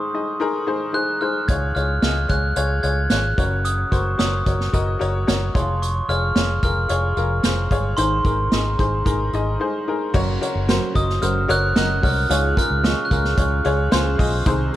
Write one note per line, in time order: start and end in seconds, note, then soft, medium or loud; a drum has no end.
0.00 1.49 G#2 soft
0.00 0.10 D#3 medium
0.00 0.14 D#4 medium
0.00 0.14 G#4 medium
0.00 0.68 C5 medium
0.00 0.64 D#6 medium
0.14 0.33 D#4 medium
0.14 0.33 G#4 medium
0.14 0.33 D#5 medium
0.40 0.59 D#4 medium
0.40 0.60 G#4 medium
0.40 0.60 A#4 medium
0.67 0.86 D#4 medium
0.67 0.86 G#4 medium
0.67 0.87 C5 medium
0.93 1.13 D#4 medium
0.93 1.13 G#4 medium
0.93 1.13 C5 medium
0.93 1.22 F#6 medium
1.21 1.40 D#4 medium
1.21 1.41 G#4 soft
1.21 1.41 C5 medium
1.21 1.33 F6 medium
1.48 1.71 C#2 medium
1.48 2.26 G#2 soft
1.48 1.68 F4 medium
1.48 1.68 G#4 medium
1.48 1.68 C#5 medium
1.48 1.76 G#6 medium
1.48 kick medium
1.48 closed hi-hat medium
1.75 1.98 C#2 medium
1.75 1.95 F4 medium
1.75 1.95 G#4 medium
1.75 1.95 C#5 medium
1.75 2.01 F6 medium
1.75 closed hi-hat soft
2.02 2.25 C#2 medium
2.02 2.22 F4 medium
2.02 2.22 G#4 soft
2.02 2.22 D#5 medium
2.02 2.31 F6 medium
2.02 snare medium
2.02 closed hi-hat medium
2.28 2.52 C#2 medium
2.28 2.48 F4 medium
2.28 2.48 G#4 soft
2.28 2.49 C#5 medium
2.28 2.55 F#6 medium
2.28 kick medium
2.28 closed hi-hat soft
2.56 2.79 C#2 medium
2.56 2.76 F4 medium
2.56 2.76 G#4 medium
2.56 2.76 C#5 medium
2.56 2.82 G#6 medium
2.56 closed hi-hat medium
2.83 3.06 C#2 medium
2.83 3.02 F4 medium
2.83 3.03 G#4 medium
2.83 3.03 C#5 medium
2.83 3.12 G#6 medium
2.83 closed hi-hat medium
3.10 3.33 G#1 medium
3.10 3.30 F4 medium
3.10 3.30 G#4 medium
3.10 3.30 C#5 medium
3.10 3.67 F#6 medium
3.10 snare medium
3.10 closed hi-hat medium
3.38 3.83 F#1 medium
3.38 4.15 C#3 medium
3.38 3.81 F#4 medium
3.38 3.81 A#4 medium
3.38 3.82 C#5 medium
3.38 kick medium
3.38 closed hi-hat medium
3.65 3.93 D#6 medium
3.65 closed hi-hat medium
3.91 4.14 F#1 medium
3.91 4.11 F#4 medium
3.91 4.11 A#4 medium
3.91 4.11 C5 medium
3.91 4.04 C#6 medium
3.91 kick medium
3.91 closed hi-hat medium
4.18 4.42 F#1 medium
4.18 4.37 F#4 medium
4.18 4.38 A#4 soft
4.18 4.38 C#5 medium
4.18 5.58 D#6 medium
4.18 snare medium
4.18 closed hi-hat medium
4.46 4.69 F#1 medium
4.46 4.65 F#4 medium
4.46 4.65 A#4 medium
4.46 4.66 C#5 medium
4.46 kick medium
4.46 closed hi-hat medium
4.60 snare soft
4.73 4.96 F#1 medium
4.73 4.92 F#4 medium
4.73 4.93 A#4 medium
4.73 4.93 D#5 medium
4.73 kick medium
4.73 closed hi-hat medium
4.99 5.23 F#1 medium
4.99 5.19 F#4 medium
4.99 5.19 A#4 medium
4.99 5.20 C#5 medium
4.99 closed hi-hat soft
5.27 5.50 F#1 medium
5.27 5.46 F#4 medium
5.27 5.47 A#4 medium
5.27 5.47 C#5 medium
5.27 snare medium
5.27 closed hi-hat medium
5.54 5.99 F1 medium
5.54 6.32 F3 medium
5.54 5.61 E4 soft
5.54 5.98 G#4 medium
5.54 5.98 C#5 medium
5.54 5.67 C6 medium
5.54 kick medium
5.54 closed hi-hat medium
5.61 6.01 F4 medium
5.82 6.07 C#6 medium
5.82 closed hi-hat medium
6.09 6.31 F1 medium
6.09 6.28 F4 medium
6.09 6.28 G#4 medium
6.09 6.28 C#5 medium
6.09 6.62 F6 medium
6.09 closed hi-hat medium
6.35 6.58 F1 medium
6.35 6.54 F4 medium
6.35 6.55 G#4 medium
6.35 6.55 C#5 medium
6.35 snare medium
6.35 closed hi-hat medium
6.63 6.85 F1 medium
6.63 6.82 F4 medium
6.63 6.82 G#4 medium
6.63 6.83 A#4 medium
6.63 6.91 F6 medium
6.63 kick medium
6.63 closed hi-hat medium
6.89 7.12 F1 medium
6.89 7.08 F4 medium
6.89 7.09 G#4 medium
6.89 7.09 C#5 medium
6.89 7.67 C#6 medium
6.89 closed hi-hat medium
7.17 7.39 F1 medium
7.17 7.36 F4 medium
7.17 7.36 G#4 medium
7.17 7.36 A#4 medium
7.17 closed hi-hat soft
7.43 7.66 F1 medium
7.43 7.63 F4 medium
7.43 7.63 G#4 medium
7.43 7.63 C5 medium
7.43 snare medium
7.43 closed hi-hat medium
7.71 7.93 G1 medium
7.71 7.90 F4 medium
7.71 7.90 G#4 medium
7.71 7.90 C#5 medium
7.71 kick medium
7.71 closed hi-hat medium
7.97 8.20 G#1 medium
7.97 8.75 G#2 medium
7.97 8.75 D#3 medium
7.97 8.17 D#4 medium
7.97 8.17 G#4 medium
7.97 8.17 C5 medium
7.97 9.56 C6 medium
7.97 closed hi-hat medium
8.25 8.47 G#1 medium
8.25 8.44 D#4 medium
8.25 8.44 G#4 medium
8.25 8.44 A#4 medium
8.25 kick medium
8.25 closed hi-hat medium
8.52 8.74 G#1 medium
8.52 8.71 D#4 medium
8.52 8.71 G#4 medium
8.52 8.72 D#5 medium
8.52 snare medium
8.52 closed hi-hat medium
8.79 9.01 G#1 medium
8.79 8.98 D#4 medium
8.79 8.98 G#4 medium
8.79 8.98 C5 medium
8.79 kick medium
8.79 closed hi-hat medium
9.05 9.28 G#1 medium
9.05 9.25 D#4 medium
9.05 9.25 G#4 medium
9.05 9.25 A#4 medium
9.05 kick medium
9.05 closed hi-hat medium
9.33 9.55 G#1 medium
9.33 9.52 D#4 medium
9.33 9.53 G#4 medium
9.33 9.53 D#5 medium
9.33 closed hi-hat soft
9.60 9.79 D#4 medium
9.60 9.79 G#4 medium
9.60 9.79 C5 medium
9.88 10.06 D#4 medium
9.88 10.07 G#4 medium
9.88 10.07 A#4 medium
10.13 10.37 F#1 medium
10.13 10.91 C#3 medium
10.13 10.41 F#3 medium
10.13 10.41 C#4 medium
10.13 10.33 F#4 loud
10.13 10.41 F#4 medium
10.13 10.33 A#4 medium
10.13 10.40 A#4 medium
10.13 10.34 C#5 loud
10.13 kick loud
10.13 crash medium
10.41 10.67 C#4 soft
10.41 10.60 F#4 medium
10.41 10.68 F#4 soft
10.41 10.68 A#4 soft
10.41 10.60 A#4 medium
10.41 10.61 C#5 medium
10.41 closed hi-hat medium
10.55 10.77 F#1 medium
10.68 10.95 F#3 medium
10.68 10.96 C#4 medium
10.68 10.87 F#4 medium
10.68 10.95 F#4 medium
10.68 10.87 A#4 medium
10.68 10.93 A#4 medium
10.68 10.88 C5 medium
10.68 snare loud
10.68 closed hi-hat medium
10.94 11.18 F#1 medium
10.94 11.21 C#4 soft
10.94 11.14 F#4 medium
10.94 11.22 F#4 soft
10.94 11.22 A#4 medium
10.94 11.14 A#4 medium
10.94 11.14 D#5 medium
10.94 11.23 D#6 medium
10.94 kick medium
10.94 closed hi-hat medium
11.09 snare soft
11.21 11.45 F#1 medium
11.21 11.49 F#3 medium
11.21 11.49 C#4 medium
11.21 11.41 F#4 medium
11.21 11.49 F#4 medium
11.21 11.41 A#4 medium
11.21 11.47 A#4 medium
11.21 11.41 C5 medium
11.21 11.50 F6 medium
11.21 closed hi-hat medium
11.48 11.72 F#1 medium
11.48 11.75 C#4 soft
11.48 11.68 F#4 medium
11.48 11.76 F#4 soft
11.48 11.76 A#4 medium
11.48 11.68 A#4 medium
11.48 11.68 C#5 medium
11.48 11.76 F#6 medium
11.48 closed hi-hat medium
11.76 11.99 F#1 medium
11.76 12.03 F#3 medium
11.76 12.03 C#4 medium
11.76 11.95 F#4 medium
11.76 12.02 F#4 medium
11.76 11.95 A#4 medium
11.76 12.01 A#4 medium
11.76 11.96 D#5 medium
11.76 11.89 F#6 medium
11.76 snare medium
11.76 closed hi-hat medium
12.02 12.26 C2 medium
12.02 12.29 C#4 soft
12.02 12.22 F#4 medium
12.02 12.30 F#4 medium
12.02 12.30 A#4 medium
12.02 12.22 A#4 medium
12.02 12.22 C#5 medium
12.02 12.57 F6 medium
12.02 kick medium
12.02 open hi-hat medium
12.29 12.52 C#2 medium
12.29 13.07 G#2 medium
12.29 12.57 C#3 medium
12.29 12.57 G#3 medium
12.29 12.57 C#4 medium
12.29 12.49 F4 medium
12.29 12.57 F4 medium
12.29 12.49 G#4 medium
12.29 12.55 G#4 medium
12.29 12.49 C#5 medium
12.29 closed hi-hat loud
12.56 12.83 C#4 soft
12.56 12.76 F4 medium
12.56 12.84 F4 medium
12.56 12.84 G#4 medium
12.56 12.76 G#4 medium
12.56 12.76 A#4 medium
12.56 12.86 F6 medium
12.56 kick medium
12.56 closed hi-hat medium
12.71 12.93 C#2 medium
12.83 13.11 C#3 medium
12.83 13.11 G#3 medium
12.83 13.12 C#4 medium
12.83 13.03 F4 medium
12.83 13.10 F4 medium
12.83 13.03 G#4 medium
12.83 13.09 G#4 medium
12.83 13.03 D#5 medium
12.83 13.05 C#6 medium
12.83 snare loud
12.83 closed hi-hat medium
13.05 13.12 F#6 medium
13.10 13.33 C#2 medium
13.10 13.36 C#4 medium
13.10 13.30 F4 medium
13.10 13.37 F4 medium
13.10 13.38 G#4 medium
13.10 13.30 G#4 medium
13.10 13.31 A#4 medium
13.10 14.16 F6 medium
13.10 kick medium
13.10 closed hi-hat medium
13.24 snare soft
13.37 13.60 C#2 medium
13.37 13.65 G#3 medium
13.37 13.65 C#4 medium
13.37 13.56 F4 medium
13.37 13.64 F4 medium
13.37 13.57 G#4 medium
13.37 13.62 G#4 medium
13.37 13.57 C#5 medium
13.37 kick medium
13.37 closed hi-hat medium
13.63 13.88 C#2 medium
13.63 13.91 C#4 soft
13.63 13.84 F4 medium
13.63 13.92 F4 soft
13.63 13.91 G#4 medium
13.63 13.84 G#4 medium
13.63 13.85 C#5 medium
13.63 closed hi-hat medium
13.92 14.15 C#2 loud
13.92 14.19 C#3 medium
13.92 14.19 G#3 medium
13.92 14.20 C#4 medium
13.92 14.11 F4 loud
13.92 14.19 F4 medium
13.92 14.11 G#4 loud
13.92 14.17 G#4 medium
13.92 14.11 C5 loud
13.92 snare medium
13.92 closed hi-hat medium
14.18 14.42 B1 medium
14.18 14.47 C#4 soft
14.18 14.38 F4 medium
14.18 14.47 F4 medium
14.18 14.46 G#4 medium
14.18 14.38 G#4 medium
14.18 14.38 D#5 medium
14.18 kick medium
14.18 open hi-hat medium
14.46 14.68 C2 medium
14.46 14.73 C3 medium
14.46 14.76 C3 medium
14.46 14.74 D#3 medium
14.46 14.74 G#3 medium
14.46 14.73 C4 medium
14.46 14.65 D#4 loud
14.46 14.72 D#4 medium
14.46 14.65 G#4 medium
14.46 14.72 G#4 medium
14.46 14.66 C5 loud
14.46 kick loud
14.46 closed hi-hat loud
14.73 14.76 G#4 medium